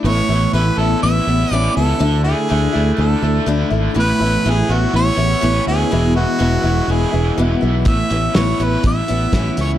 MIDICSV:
0, 0, Header, 1, 6, 480
1, 0, Start_track
1, 0, Key_signature, 3, "major"
1, 0, Tempo, 488998
1, 46, Time_signature, 4, 2, 24, 8
1, 9602, End_track
2, 0, Start_track
2, 0, Title_t, "Harmonica"
2, 0, Program_c, 0, 22
2, 57, Note_on_c, 0, 73, 93
2, 499, Note_off_c, 0, 73, 0
2, 526, Note_on_c, 0, 71, 82
2, 765, Note_on_c, 0, 69, 71
2, 780, Note_off_c, 0, 71, 0
2, 1002, Note_off_c, 0, 69, 0
2, 1008, Note_on_c, 0, 76, 92
2, 1508, Note_off_c, 0, 76, 0
2, 1508, Note_on_c, 0, 74, 92
2, 1689, Note_off_c, 0, 74, 0
2, 1729, Note_on_c, 0, 69, 82
2, 2175, Note_off_c, 0, 69, 0
2, 2198, Note_on_c, 0, 68, 88
2, 2883, Note_off_c, 0, 68, 0
2, 2946, Note_on_c, 0, 69, 67
2, 3384, Note_off_c, 0, 69, 0
2, 3922, Note_on_c, 0, 71, 97
2, 4419, Note_on_c, 0, 68, 84
2, 4433, Note_off_c, 0, 71, 0
2, 4640, Note_on_c, 0, 66, 75
2, 4655, Note_off_c, 0, 68, 0
2, 4863, Note_off_c, 0, 66, 0
2, 4868, Note_on_c, 0, 73, 105
2, 5538, Note_off_c, 0, 73, 0
2, 5574, Note_on_c, 0, 68, 84
2, 6016, Note_off_c, 0, 68, 0
2, 6050, Note_on_c, 0, 66, 82
2, 6786, Note_on_c, 0, 68, 71
2, 6800, Note_off_c, 0, 66, 0
2, 7255, Note_off_c, 0, 68, 0
2, 7732, Note_on_c, 0, 76, 83
2, 8211, Note_on_c, 0, 73, 78
2, 8226, Note_off_c, 0, 76, 0
2, 8476, Note_on_c, 0, 71, 75
2, 8491, Note_off_c, 0, 73, 0
2, 8700, Note_off_c, 0, 71, 0
2, 8706, Note_on_c, 0, 76, 92
2, 9375, Note_off_c, 0, 76, 0
2, 9434, Note_on_c, 0, 73, 81
2, 9535, Note_off_c, 0, 73, 0
2, 9602, End_track
3, 0, Start_track
3, 0, Title_t, "Steel-string acoustic guitar"
3, 0, Program_c, 1, 25
3, 46, Note_on_c, 1, 45, 62
3, 50, Note_on_c, 1, 52, 65
3, 50, Note_on_c, 1, 59, 68
3, 55, Note_on_c, 1, 61, 75
3, 60, Note_on_c, 1, 64, 82
3, 279, Note_off_c, 1, 64, 0
3, 286, Note_off_c, 1, 45, 0
3, 288, Note_off_c, 1, 52, 0
3, 288, Note_off_c, 1, 59, 0
3, 291, Note_off_c, 1, 61, 0
3, 291, Note_on_c, 1, 64, 46
3, 304, Note_on_c, 1, 61, 46
3, 315, Note_on_c, 1, 59, 41
3, 519, Note_off_c, 1, 59, 0
3, 520, Note_off_c, 1, 61, 0
3, 522, Note_on_c, 1, 45, 66
3, 523, Note_on_c, 1, 52, 63
3, 525, Note_off_c, 1, 64, 0
3, 531, Note_on_c, 1, 59, 62
3, 532, Note_on_c, 1, 61, 71
3, 537, Note_on_c, 1, 64, 74
3, 760, Note_off_c, 1, 64, 0
3, 765, Note_off_c, 1, 45, 0
3, 765, Note_off_c, 1, 52, 0
3, 769, Note_off_c, 1, 59, 0
3, 770, Note_off_c, 1, 61, 0
3, 771, Note_on_c, 1, 64, 48
3, 781, Note_on_c, 1, 61, 45
3, 797, Note_on_c, 1, 59, 37
3, 1001, Note_off_c, 1, 59, 0
3, 1002, Note_on_c, 1, 52, 45
3, 1008, Note_off_c, 1, 61, 0
3, 1009, Note_off_c, 1, 64, 0
3, 1013, Note_on_c, 1, 59, 48
3, 1020, Note_on_c, 1, 61, 50
3, 1034, Note_on_c, 1, 64, 56
3, 1234, Note_off_c, 1, 64, 0
3, 1245, Note_off_c, 1, 52, 0
3, 1245, Note_off_c, 1, 61, 0
3, 1246, Note_on_c, 1, 64, 42
3, 1250, Note_off_c, 1, 59, 0
3, 1257, Note_on_c, 1, 61, 39
3, 1270, Note_on_c, 1, 59, 34
3, 1487, Note_off_c, 1, 64, 0
3, 1490, Note_off_c, 1, 59, 0
3, 1492, Note_off_c, 1, 61, 0
3, 1498, Note_on_c, 1, 45, 73
3, 1499, Note_on_c, 1, 52, 80
3, 1502, Note_on_c, 1, 59, 82
3, 1509, Note_on_c, 1, 61, 74
3, 1512, Note_on_c, 1, 64, 82
3, 1722, Note_off_c, 1, 64, 0
3, 1733, Note_off_c, 1, 45, 0
3, 1733, Note_off_c, 1, 52, 0
3, 1734, Note_on_c, 1, 64, 47
3, 1735, Note_off_c, 1, 59, 0
3, 1735, Note_off_c, 1, 61, 0
3, 1747, Note_on_c, 1, 61, 43
3, 1762, Note_on_c, 1, 59, 38
3, 1956, Note_on_c, 1, 50, 68
3, 1958, Note_off_c, 1, 64, 0
3, 1961, Note_off_c, 1, 59, 0
3, 1965, Note_on_c, 1, 57, 83
3, 1966, Note_off_c, 1, 61, 0
3, 1969, Note_on_c, 1, 64, 83
3, 1970, Note_on_c, 1, 62, 74
3, 2193, Note_off_c, 1, 64, 0
3, 2201, Note_off_c, 1, 62, 0
3, 2202, Note_off_c, 1, 50, 0
3, 2205, Note_on_c, 1, 64, 50
3, 2206, Note_off_c, 1, 57, 0
3, 2213, Note_on_c, 1, 62, 48
3, 2225, Note_on_c, 1, 57, 39
3, 2439, Note_off_c, 1, 57, 0
3, 2441, Note_on_c, 1, 50, 69
3, 2443, Note_off_c, 1, 62, 0
3, 2446, Note_off_c, 1, 64, 0
3, 2450, Note_on_c, 1, 57, 69
3, 2455, Note_on_c, 1, 62, 72
3, 2456, Note_on_c, 1, 64, 68
3, 2664, Note_off_c, 1, 64, 0
3, 2676, Note_on_c, 1, 64, 50
3, 2678, Note_off_c, 1, 62, 0
3, 2684, Note_off_c, 1, 50, 0
3, 2689, Note_off_c, 1, 57, 0
3, 2690, Note_on_c, 1, 62, 47
3, 2701, Note_on_c, 1, 57, 44
3, 2911, Note_on_c, 1, 50, 59
3, 2913, Note_off_c, 1, 57, 0
3, 2913, Note_off_c, 1, 62, 0
3, 2922, Note_off_c, 1, 64, 0
3, 2924, Note_on_c, 1, 62, 55
3, 2925, Note_on_c, 1, 57, 54
3, 2935, Note_on_c, 1, 64, 57
3, 3153, Note_off_c, 1, 64, 0
3, 3159, Note_off_c, 1, 50, 0
3, 3162, Note_off_c, 1, 62, 0
3, 3164, Note_on_c, 1, 64, 44
3, 3166, Note_off_c, 1, 57, 0
3, 3173, Note_on_c, 1, 62, 40
3, 3183, Note_on_c, 1, 57, 37
3, 3398, Note_off_c, 1, 57, 0
3, 3399, Note_on_c, 1, 50, 81
3, 3404, Note_off_c, 1, 62, 0
3, 3406, Note_off_c, 1, 64, 0
3, 3410, Note_on_c, 1, 57, 79
3, 3416, Note_on_c, 1, 62, 74
3, 3419, Note_on_c, 1, 64, 95
3, 3624, Note_off_c, 1, 64, 0
3, 3634, Note_off_c, 1, 62, 0
3, 3636, Note_on_c, 1, 64, 54
3, 3643, Note_off_c, 1, 50, 0
3, 3646, Note_off_c, 1, 57, 0
3, 3646, Note_on_c, 1, 62, 50
3, 3658, Note_on_c, 1, 57, 41
3, 3871, Note_on_c, 1, 45, 70
3, 3877, Note_off_c, 1, 64, 0
3, 3877, Note_on_c, 1, 52, 70
3, 3879, Note_off_c, 1, 57, 0
3, 3880, Note_off_c, 1, 62, 0
3, 3883, Note_on_c, 1, 59, 74
3, 3884, Note_on_c, 1, 61, 70
3, 3889, Note_on_c, 1, 64, 76
3, 4119, Note_off_c, 1, 45, 0
3, 4119, Note_off_c, 1, 64, 0
3, 4122, Note_off_c, 1, 52, 0
3, 4125, Note_off_c, 1, 59, 0
3, 4125, Note_off_c, 1, 61, 0
3, 4131, Note_on_c, 1, 64, 49
3, 4140, Note_on_c, 1, 61, 45
3, 4153, Note_on_c, 1, 59, 44
3, 4366, Note_off_c, 1, 59, 0
3, 4366, Note_off_c, 1, 61, 0
3, 4369, Note_off_c, 1, 64, 0
3, 4369, Note_on_c, 1, 45, 61
3, 4371, Note_on_c, 1, 52, 62
3, 4377, Note_on_c, 1, 59, 72
3, 4378, Note_on_c, 1, 61, 72
3, 4384, Note_on_c, 1, 64, 81
3, 4602, Note_off_c, 1, 64, 0
3, 4608, Note_off_c, 1, 45, 0
3, 4609, Note_off_c, 1, 52, 0
3, 4612, Note_off_c, 1, 59, 0
3, 4612, Note_off_c, 1, 61, 0
3, 4614, Note_on_c, 1, 64, 46
3, 4628, Note_on_c, 1, 61, 48
3, 4635, Note_on_c, 1, 59, 39
3, 4848, Note_off_c, 1, 59, 0
3, 4850, Note_off_c, 1, 64, 0
3, 4853, Note_on_c, 1, 52, 51
3, 4857, Note_off_c, 1, 61, 0
3, 4859, Note_on_c, 1, 59, 46
3, 4873, Note_on_c, 1, 61, 54
3, 4878, Note_on_c, 1, 64, 55
3, 5068, Note_off_c, 1, 64, 0
3, 5080, Note_on_c, 1, 64, 49
3, 5081, Note_off_c, 1, 61, 0
3, 5089, Note_off_c, 1, 52, 0
3, 5092, Note_on_c, 1, 61, 37
3, 5093, Note_off_c, 1, 59, 0
3, 5105, Note_on_c, 1, 59, 36
3, 5312, Note_off_c, 1, 59, 0
3, 5313, Note_on_c, 1, 45, 77
3, 5317, Note_off_c, 1, 61, 0
3, 5323, Note_off_c, 1, 64, 0
3, 5323, Note_on_c, 1, 52, 81
3, 5324, Note_on_c, 1, 59, 87
3, 5329, Note_on_c, 1, 61, 83
3, 5335, Note_on_c, 1, 64, 91
3, 5555, Note_off_c, 1, 64, 0
3, 5559, Note_off_c, 1, 45, 0
3, 5564, Note_off_c, 1, 52, 0
3, 5565, Note_off_c, 1, 59, 0
3, 5565, Note_off_c, 1, 61, 0
3, 5567, Note_on_c, 1, 64, 52
3, 5577, Note_on_c, 1, 61, 47
3, 5593, Note_on_c, 1, 59, 42
3, 5799, Note_on_c, 1, 47, 67
3, 5800, Note_off_c, 1, 59, 0
3, 5801, Note_on_c, 1, 40, 71
3, 5806, Note_off_c, 1, 64, 0
3, 5806, Note_on_c, 1, 52, 73
3, 5806, Note_on_c, 1, 56, 69
3, 5808, Note_off_c, 1, 61, 0
3, 5812, Note_on_c, 1, 59, 82
3, 5818, Note_on_c, 1, 64, 72
3, 6021, Note_off_c, 1, 64, 0
3, 6031, Note_off_c, 1, 59, 0
3, 6033, Note_on_c, 1, 64, 53
3, 6035, Note_off_c, 1, 56, 0
3, 6041, Note_off_c, 1, 52, 0
3, 6042, Note_off_c, 1, 47, 0
3, 6043, Note_off_c, 1, 40, 0
3, 6043, Note_on_c, 1, 59, 50
3, 6047, Note_on_c, 1, 56, 44
3, 6053, Note_on_c, 1, 52, 37
3, 6267, Note_on_c, 1, 40, 66
3, 6268, Note_off_c, 1, 52, 0
3, 6270, Note_off_c, 1, 59, 0
3, 6270, Note_off_c, 1, 64, 0
3, 6272, Note_off_c, 1, 56, 0
3, 6274, Note_on_c, 1, 47, 73
3, 6279, Note_on_c, 1, 52, 68
3, 6281, Note_on_c, 1, 59, 68
3, 6282, Note_on_c, 1, 64, 74
3, 6283, Note_on_c, 1, 56, 67
3, 6491, Note_off_c, 1, 64, 0
3, 6497, Note_off_c, 1, 59, 0
3, 6503, Note_on_c, 1, 64, 51
3, 6508, Note_off_c, 1, 56, 0
3, 6509, Note_on_c, 1, 59, 50
3, 6516, Note_off_c, 1, 40, 0
3, 6517, Note_off_c, 1, 52, 0
3, 6519, Note_off_c, 1, 47, 0
3, 6520, Note_on_c, 1, 56, 46
3, 6529, Note_on_c, 1, 52, 38
3, 6739, Note_off_c, 1, 52, 0
3, 6751, Note_off_c, 1, 56, 0
3, 6751, Note_on_c, 1, 52, 47
3, 6754, Note_off_c, 1, 64, 0
3, 6757, Note_off_c, 1, 59, 0
3, 6763, Note_on_c, 1, 56, 49
3, 6768, Note_on_c, 1, 59, 55
3, 6773, Note_on_c, 1, 64, 61
3, 6974, Note_off_c, 1, 64, 0
3, 6986, Note_on_c, 1, 64, 45
3, 6988, Note_off_c, 1, 56, 0
3, 6988, Note_off_c, 1, 59, 0
3, 6993, Note_off_c, 1, 52, 0
3, 7000, Note_on_c, 1, 56, 41
3, 7000, Note_on_c, 1, 59, 43
3, 7005, Note_on_c, 1, 52, 38
3, 7231, Note_off_c, 1, 52, 0
3, 7235, Note_off_c, 1, 64, 0
3, 7237, Note_off_c, 1, 56, 0
3, 7240, Note_on_c, 1, 40, 76
3, 7240, Note_on_c, 1, 47, 69
3, 7242, Note_off_c, 1, 59, 0
3, 7243, Note_on_c, 1, 52, 79
3, 7249, Note_on_c, 1, 56, 70
3, 7256, Note_on_c, 1, 59, 72
3, 7258, Note_on_c, 1, 64, 90
3, 7456, Note_off_c, 1, 64, 0
3, 7468, Note_on_c, 1, 64, 57
3, 7469, Note_off_c, 1, 59, 0
3, 7474, Note_off_c, 1, 56, 0
3, 7481, Note_on_c, 1, 59, 49
3, 7482, Note_off_c, 1, 40, 0
3, 7482, Note_off_c, 1, 47, 0
3, 7483, Note_off_c, 1, 52, 0
3, 7485, Note_on_c, 1, 56, 43
3, 7494, Note_on_c, 1, 52, 45
3, 7711, Note_off_c, 1, 52, 0
3, 7716, Note_off_c, 1, 59, 0
3, 7716, Note_off_c, 1, 64, 0
3, 7721, Note_on_c, 1, 45, 74
3, 7723, Note_on_c, 1, 52, 66
3, 7724, Note_off_c, 1, 56, 0
3, 7728, Note_on_c, 1, 59, 70
3, 7729, Note_on_c, 1, 61, 68
3, 7736, Note_on_c, 1, 64, 72
3, 7950, Note_off_c, 1, 64, 0
3, 7960, Note_off_c, 1, 61, 0
3, 7962, Note_on_c, 1, 64, 50
3, 7963, Note_off_c, 1, 45, 0
3, 7963, Note_off_c, 1, 52, 0
3, 7966, Note_off_c, 1, 59, 0
3, 7971, Note_on_c, 1, 61, 51
3, 7981, Note_on_c, 1, 59, 41
3, 8202, Note_off_c, 1, 64, 0
3, 8204, Note_off_c, 1, 59, 0
3, 8206, Note_on_c, 1, 45, 70
3, 8207, Note_off_c, 1, 61, 0
3, 8212, Note_on_c, 1, 52, 64
3, 8216, Note_on_c, 1, 59, 64
3, 8218, Note_on_c, 1, 64, 73
3, 8219, Note_on_c, 1, 61, 70
3, 8425, Note_off_c, 1, 64, 0
3, 8435, Note_off_c, 1, 61, 0
3, 8437, Note_on_c, 1, 64, 54
3, 8445, Note_off_c, 1, 45, 0
3, 8446, Note_on_c, 1, 61, 46
3, 8448, Note_off_c, 1, 52, 0
3, 8449, Note_off_c, 1, 59, 0
3, 8462, Note_on_c, 1, 59, 41
3, 8662, Note_off_c, 1, 59, 0
3, 8671, Note_on_c, 1, 52, 51
3, 8672, Note_off_c, 1, 61, 0
3, 8674, Note_on_c, 1, 59, 52
3, 8680, Note_off_c, 1, 64, 0
3, 8684, Note_on_c, 1, 61, 51
3, 8690, Note_on_c, 1, 64, 53
3, 8903, Note_off_c, 1, 64, 0
3, 8911, Note_off_c, 1, 61, 0
3, 8914, Note_on_c, 1, 64, 51
3, 8917, Note_off_c, 1, 52, 0
3, 8918, Note_off_c, 1, 59, 0
3, 8923, Note_on_c, 1, 61, 37
3, 8939, Note_on_c, 1, 59, 34
3, 9149, Note_on_c, 1, 45, 70
3, 9150, Note_off_c, 1, 59, 0
3, 9153, Note_off_c, 1, 61, 0
3, 9159, Note_off_c, 1, 64, 0
3, 9160, Note_on_c, 1, 52, 86
3, 9162, Note_on_c, 1, 59, 76
3, 9164, Note_on_c, 1, 61, 75
3, 9172, Note_on_c, 1, 64, 93
3, 9390, Note_off_c, 1, 64, 0
3, 9396, Note_off_c, 1, 45, 0
3, 9400, Note_off_c, 1, 61, 0
3, 9401, Note_off_c, 1, 52, 0
3, 9402, Note_off_c, 1, 59, 0
3, 9402, Note_on_c, 1, 64, 50
3, 9412, Note_on_c, 1, 61, 42
3, 9422, Note_on_c, 1, 59, 43
3, 9602, Note_off_c, 1, 59, 0
3, 9602, Note_off_c, 1, 61, 0
3, 9602, Note_off_c, 1, 64, 0
3, 9602, End_track
4, 0, Start_track
4, 0, Title_t, "Overdriven electric guitar"
4, 0, Program_c, 2, 29
4, 278, Note_on_c, 2, 52, 59
4, 525, Note_off_c, 2, 52, 0
4, 1738, Note_on_c, 2, 52, 61
4, 1969, Note_off_c, 2, 52, 0
4, 3637, Note_on_c, 2, 50, 61
4, 3882, Note_off_c, 2, 50, 0
4, 4120, Note_on_c, 2, 52, 64
4, 4370, Note_off_c, 2, 52, 0
4, 5554, Note_on_c, 2, 52, 61
4, 6039, Note_on_c, 2, 47, 59
4, 6269, Note_off_c, 2, 52, 0
4, 7241, Note_off_c, 2, 47, 0
4, 7951, Note_on_c, 2, 52, 56
4, 8190, Note_off_c, 2, 52, 0
4, 9403, Note_on_c, 2, 52, 57
4, 9602, Note_off_c, 2, 52, 0
4, 9602, End_track
5, 0, Start_track
5, 0, Title_t, "Fingered electric bass"
5, 0, Program_c, 3, 33
5, 41, Note_on_c, 3, 33, 83
5, 200, Note_off_c, 3, 33, 0
5, 283, Note_on_c, 3, 33, 68
5, 442, Note_off_c, 3, 33, 0
5, 523, Note_on_c, 3, 33, 85
5, 682, Note_off_c, 3, 33, 0
5, 761, Note_on_c, 3, 33, 78
5, 921, Note_off_c, 3, 33, 0
5, 1013, Note_on_c, 3, 33, 87
5, 1169, Note_off_c, 3, 33, 0
5, 1249, Note_on_c, 3, 33, 80
5, 1406, Note_off_c, 3, 33, 0
5, 1485, Note_on_c, 3, 33, 77
5, 1643, Note_off_c, 3, 33, 0
5, 1735, Note_on_c, 3, 37, 72
5, 1890, Note_off_c, 3, 37, 0
5, 1967, Note_on_c, 3, 38, 89
5, 2282, Note_off_c, 3, 38, 0
5, 2468, Note_on_c, 3, 38, 86
5, 2619, Note_off_c, 3, 38, 0
5, 2704, Note_on_c, 3, 38, 65
5, 2856, Note_off_c, 3, 38, 0
5, 2928, Note_on_c, 3, 38, 87
5, 3085, Note_off_c, 3, 38, 0
5, 3165, Note_on_c, 3, 38, 85
5, 3323, Note_off_c, 3, 38, 0
5, 3403, Note_on_c, 3, 38, 77
5, 3562, Note_off_c, 3, 38, 0
5, 3644, Note_on_c, 3, 32, 74
5, 3802, Note_off_c, 3, 32, 0
5, 3884, Note_on_c, 3, 33, 81
5, 4043, Note_off_c, 3, 33, 0
5, 4128, Note_on_c, 3, 33, 77
5, 4285, Note_off_c, 3, 33, 0
5, 4374, Note_on_c, 3, 33, 85
5, 4529, Note_off_c, 3, 33, 0
5, 4604, Note_on_c, 3, 33, 77
5, 4762, Note_off_c, 3, 33, 0
5, 4844, Note_on_c, 3, 33, 80
5, 5002, Note_off_c, 3, 33, 0
5, 5078, Note_on_c, 3, 33, 81
5, 5238, Note_off_c, 3, 33, 0
5, 5330, Note_on_c, 3, 33, 79
5, 5486, Note_off_c, 3, 33, 0
5, 5567, Note_on_c, 3, 38, 71
5, 5724, Note_off_c, 3, 38, 0
5, 5818, Note_on_c, 3, 28, 80
5, 6129, Note_off_c, 3, 28, 0
5, 6287, Note_on_c, 3, 28, 76
5, 6444, Note_off_c, 3, 28, 0
5, 6515, Note_on_c, 3, 28, 75
5, 6676, Note_off_c, 3, 28, 0
5, 6751, Note_on_c, 3, 28, 83
5, 6913, Note_off_c, 3, 28, 0
5, 7006, Note_on_c, 3, 28, 77
5, 7163, Note_off_c, 3, 28, 0
5, 7242, Note_on_c, 3, 28, 80
5, 7400, Note_off_c, 3, 28, 0
5, 7486, Note_on_c, 3, 35, 74
5, 7712, Note_off_c, 3, 35, 0
5, 7712, Note_on_c, 3, 33, 85
5, 7873, Note_off_c, 3, 33, 0
5, 7959, Note_on_c, 3, 33, 78
5, 8118, Note_off_c, 3, 33, 0
5, 8211, Note_on_c, 3, 33, 82
5, 8366, Note_off_c, 3, 33, 0
5, 8438, Note_on_c, 3, 33, 72
5, 8597, Note_off_c, 3, 33, 0
5, 8677, Note_on_c, 3, 33, 88
5, 8837, Note_off_c, 3, 33, 0
5, 8935, Note_on_c, 3, 33, 83
5, 9089, Note_off_c, 3, 33, 0
5, 9157, Note_on_c, 3, 33, 82
5, 9316, Note_off_c, 3, 33, 0
5, 9401, Note_on_c, 3, 37, 73
5, 9602, Note_off_c, 3, 37, 0
5, 9602, End_track
6, 0, Start_track
6, 0, Title_t, "Drums"
6, 7708, Note_on_c, 9, 42, 68
6, 7717, Note_on_c, 9, 36, 96
6, 7806, Note_off_c, 9, 42, 0
6, 7815, Note_off_c, 9, 36, 0
6, 7954, Note_on_c, 9, 42, 50
6, 8053, Note_off_c, 9, 42, 0
6, 8192, Note_on_c, 9, 42, 77
6, 8196, Note_on_c, 9, 38, 106
6, 8290, Note_off_c, 9, 42, 0
6, 8294, Note_off_c, 9, 38, 0
6, 8439, Note_on_c, 9, 42, 52
6, 8537, Note_off_c, 9, 42, 0
6, 8674, Note_on_c, 9, 42, 73
6, 8678, Note_on_c, 9, 36, 74
6, 8772, Note_off_c, 9, 42, 0
6, 8776, Note_off_c, 9, 36, 0
6, 8915, Note_on_c, 9, 42, 56
6, 9013, Note_off_c, 9, 42, 0
6, 9157, Note_on_c, 9, 36, 70
6, 9157, Note_on_c, 9, 42, 82
6, 9161, Note_on_c, 9, 38, 99
6, 9255, Note_off_c, 9, 36, 0
6, 9255, Note_off_c, 9, 42, 0
6, 9259, Note_off_c, 9, 38, 0
6, 9395, Note_on_c, 9, 42, 56
6, 9494, Note_off_c, 9, 42, 0
6, 9602, End_track
0, 0, End_of_file